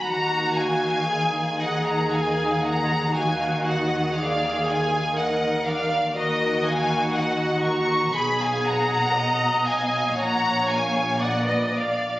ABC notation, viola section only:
X:1
M:4/4
L:1/8
Q:1/4=59
K:Ebm
V:1 name="Viola section"
G2 A4 G2 | A2 B2 G4 | A2 e2 d2 =d2 |]